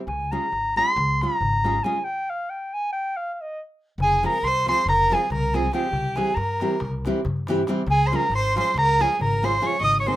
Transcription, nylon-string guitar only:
0.32 0.46 G#3 medium
0.32 0.46 C#4 medium
0.32 0.46 F4 medium
0.32 0.46 G#4 medium
0.76 0.90 G#3 medium
0.76 0.90 C#4 medium
0.76 0.91 F4 medium
0.76 0.91 G#4 medium
1.22 1.35 G#3 medium
1.22 1.35 C#4 soft
1.22 1.36 F4 medium
1.22 1.36 G#4 medium
1.64 1.77 G#3 medium
1.64 1.78 C#4 medium
1.64 1.78 F4 medium
1.64 1.78 G#4 medium
1.84 1.97 G#3 medium
1.84 1.97 C#4 medium
1.84 1.98 F4 medium
1.84 1.98 G#4 medium
4.23 4.36 F3 medium
4.23 4.36 G#3 medium
4.23 4.37 C4 medium
4.23 4.37 F4 medium
4.23 4.37 G#4 medium
4.66 4.80 F3 medium
4.66 4.80 G#3 medium
4.66 4.81 C4 medium
4.66 4.81 F4 medium
4.66 4.81 G#4 medium
5.10 5.24 F3 medium
5.10 5.24 G#3 medium
5.10 5.25 C4 medium
5.10 5.25 F4 medium
5.10 5.25 G#4 medium
5.53 5.67 F3 medium
5.53 5.67 G#3 medium
5.53 5.67 C4 medium
5.53 5.67 F4 medium
5.53 5.68 G#4 medium
5.73 5.86 F3 medium
5.73 5.87 G#3 medium
5.73 5.86 C4 medium
5.73 5.87 F4 medium
5.73 5.87 G#4 medium
6.16 6.30 E3 medium
6.16 6.30 G3 medium
6.16 6.30 C4 medium
6.16 6.31 E4 medium
6.16 6.31 G4 medium
6.61 6.75 E3 medium
6.61 6.75 G3 medium
6.61 6.75 C4 medium
6.61 6.75 E4 medium
6.61 6.75 G4 medium
7.06 7.19 E3 medium
7.06 7.19 G3 medium
7.06 7.20 C4 medium
7.06 7.20 E4 medium
7.06 7.20 G4 medium
7.48 7.61 E3 loud
7.48 7.62 G3 medium
7.48 7.62 C4 medium
7.48 7.62 E4 medium
7.48 7.62 G4 loud
7.68 7.81 E3 medium
7.68 7.81 G3 medium
7.68 7.81 C4 medium
7.68 7.81 E4 medium
7.68 7.82 G4 loud
8.11 8.25 F3 medium
8.11 8.25 G#3 medium
8.11 8.26 C#4 medium
8.11 8.26 F4 medium
8.11 8.26 G#4 medium
8.55 8.69 F3 medium
8.55 8.70 G#3 medium
8.55 8.70 C#4 medium
8.55 8.70 F4 medium
8.55 8.70 G#4 medium
8.99 9.13 F3 medium
8.99 9.14 G#3 medium
8.99 9.14 C#4 medium
8.99 9.14 F4 medium
8.99 9.14 G#4 medium
9.42 9.56 F3 medium
9.42 9.56 G#3 medium
9.42 9.56 C#4 medium
9.42 9.56 F4 medium
9.42 9.56 G#4 medium
9.61 9.75 F3 medium
9.61 9.75 G#3 medium
9.61 9.75 C#4 medium
9.61 9.75 F4 medium
9.61 9.76 G#4 medium
10.06 10.16 D#3 medium
10.06 10.16 G#3 medium
10.06 10.16 C4 medium
10.06 10.16 D#4 medium
10.06 10.16 G#4 medium

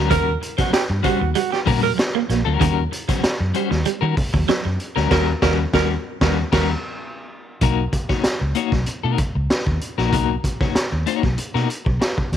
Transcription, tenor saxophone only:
0.10 0.35 A#4 loud
0.59 0.70 F#4 medium
0.73 0.83 G4 medium
1.04 1.29 F#4 loud
1.35 1.49 F#4 loud
1.52 1.61 G4 medium
1.83 1.92 A#4 loud
5.11 5.27 A#4 loud
5.42 5.58 A#4 loud
5.74 5.90 A#4 loud
6.22 6.37 A#4 medium
6.53 6.69 A#4 medium

